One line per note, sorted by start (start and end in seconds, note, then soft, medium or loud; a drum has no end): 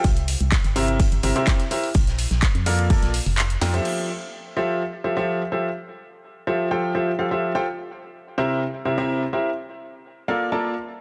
0.04 0.36 C2 loud
0.04 kick loud
0.04 closed hi-hat medium
0.17 closed hi-hat soft
0.28 closed hi-hat medium
0.28 open hi-hat loud
0.40 0.58 C2 medium
0.40 closed hi-hat soft
0.52 kick loud
0.52 snare loud
0.52 clap loud
0.52 closed hi-hat medium
0.52 closed hi-hat loud
0.64 1.07 G1 medium
0.64 closed hi-hat soft
0.76 1.00 C3 loud
0.76 1.00 E4 medium
0.76 1.00 G4 medium
0.76 1.00 A#4 medium
0.76 1.00 C5 medium
0.76 1.00 E5 loud
0.76 closed hi-hat medium
0.76 open hi-hat loud
0.88 closed hi-hat soft
1.00 kick loud
1.00 closed hi-hat medium
1.12 1.21 G1 medium
1.12 closed hi-hat soft
1.23 1.33 G1 loud
1.23 1.34 C3 medium
1.23 1.34 E4 medium
1.23 1.34 G4 medium
1.23 1.34 A#4 medium
1.23 1.34 C5 medium
1.23 1.34 E5 medium
1.23 closed hi-hat medium
1.23 open hi-hat loud
1.36 1.60 C3 medium
1.36 1.60 E4 medium
1.36 1.60 G4 medium
1.36 1.60 A#4 medium
1.36 1.60 C5 medium
1.36 1.60 E5 loud
1.36 closed hi-hat soft
1.47 kick loud
1.47 snare loud
1.47 clap loud
1.47 closed hi-hat medium
1.60 snare soft
1.60 closed hi-hat soft
1.71 1.87 E4 medium
1.71 1.87 G4 medium
1.71 1.87 A#4 medium
1.71 1.87 C5 medium
1.71 1.87 E5 medium
1.71 open hi-hat loud
1.83 open hi-hat medium
1.94 2.26 A#1 loud
1.94 kick loud
1.94 closed hi-hat medium
2.07 snare soft
2.07 closed hi-hat soft
2.18 closed hi-hat medium
2.18 open hi-hat loud
2.31 2.49 A#1 medium
2.31 snare medium
2.31 closed hi-hat soft
2.42 kick loud
2.42 snare loud
2.42 clap loud
2.42 closed hi-hat medium
2.55 2.98 F2 medium
2.55 closed hi-hat soft
2.66 2.87 A#3 medium
2.66 2.87 F4 medium
2.66 2.87 A4 medium
2.66 2.87 A#4 medium
2.66 2.87 D5 medium
2.66 2.87 F5 medium
2.66 closed hi-hat medium
2.66 open hi-hat loud
2.78 closed hi-hat soft
2.90 3.11 A#3 medium
2.90 3.11 F4 medium
2.90 3.11 A4 medium
2.90 3.11 A#4 medium
2.90 3.11 D5 medium
2.90 3.11 A5 medium
2.90 kick loud
2.90 closed hi-hat medium
3.02 3.20 A#1 medium
3.02 snare soft
3.02 closed hi-hat soft
3.14 closed hi-hat medium
3.14 open hi-hat loud
3.26 3.57 F1 loud
3.26 open hi-hat medium
3.38 snare loud
3.38 clap loud
3.38 closed hi-hat medium
3.50 closed hi-hat soft
3.61 3.80 F2 loud
3.61 3.72 F3 medium
3.61 3.72 F4 medium
3.61 3.72 A4 medium
3.61 3.72 A#4 medium
3.61 3.72 D5 medium
3.61 3.72 G5 medium
3.61 snare medium
3.61 closed hi-hat medium
3.61 open hi-hat loud
3.74 4.09 F3 medium
3.74 4.09 F4 medium
3.74 4.09 G4 medium
3.74 4.09 A4 medium
3.74 4.09 C5 medium
3.74 4.09 E5 loud
3.74 closed hi-hat soft
3.85 crash medium
4.57 4.81 F3 medium
4.57 4.81 F4 medium
4.57 4.81 G4 medium
4.57 4.81 A4 medium
4.57 4.81 C5 medium
4.57 4.81 E5 loud
5.04 5.15 F3 medium
5.04 5.15 F4 medium
5.04 5.15 G4 medium
5.04 5.15 A4 medium
5.04 5.15 C5 medium
5.04 5.15 E5 medium
5.17 5.41 F3 medium
5.17 5.41 F4 medium
5.17 5.41 G4 medium
5.17 5.41 A4 medium
5.17 5.41 C5 medium
5.17 5.41 E5 medium
5.52 5.68 F3 medium
5.52 5.68 F4 medium
5.52 5.68 G4 medium
5.52 5.68 A4 medium
5.52 5.68 C5 medium
5.52 5.68 E5 medium
6.47 6.68 F3 medium
6.47 6.68 F4 medium
6.47 6.68 G4 medium
6.47 6.68 A4 medium
6.47 6.68 C5 medium
6.47 6.68 E5 medium
6.71 6.92 F3 medium
6.71 6.92 F4 medium
6.71 6.92 G4 medium
6.71 6.92 A4 medium
6.71 6.92 C5 medium
6.71 6.92 G5 medium
6.95 7.10 F3 medium
6.95 7.10 F4 medium
6.95 7.10 G4 medium
6.95 7.10 A4 medium
6.95 7.10 C5 medium
6.95 7.10 E5 medium
7.19 7.28 F3 medium
7.19 7.28 F4 medium
7.19 7.28 G4 medium
7.19 7.28 A4 medium
7.19 7.28 C5 medium
7.19 7.28 F5 medium
7.31 7.51 F3 medium
7.31 7.51 F4 medium
7.31 7.51 G4 medium
7.31 7.51 A4 medium
7.31 7.51 C5 medium
7.31 7.51 E5 medium
7.55 7.65 F4 medium
7.55 7.65 G4 medium
7.55 7.65 A4 medium
7.55 7.65 C5 medium
7.55 7.65 G5 medium
8.38 8.62 C3 medium
8.38 8.62 E4 medium
8.38 8.62 G4 medium
8.38 8.62 A#4 medium
8.38 8.62 C5 medium
8.38 8.62 E5 loud
8.85 8.96 C3 medium
8.85 8.96 E4 medium
8.85 8.96 G4 medium
8.85 8.96 A#4 medium
8.85 8.96 C5 medium
8.85 8.96 E5 medium
8.98 9.22 C3 medium
8.98 9.22 E4 medium
8.98 9.22 G4 medium
8.98 9.22 A#4 medium
8.98 9.22 C5 medium
8.98 9.22 E5 medium
9.33 9.49 E4 medium
9.33 9.49 G4 medium
9.33 9.49 A#4 medium
9.33 9.49 C5 medium
9.33 9.49 E5 medium
10.28 10.49 A#3 medium
10.28 10.49 F4 medium
10.28 10.49 A4 medium
10.28 10.49 A#4 medium
10.28 10.49 D5 medium
10.28 10.49 F5 medium
10.52 10.73 A#3 medium
10.52 10.73 F4 medium
10.52 10.73 A4 medium
10.52 10.73 A#4 medium
10.52 10.73 D5 medium
10.52 10.73 A5 medium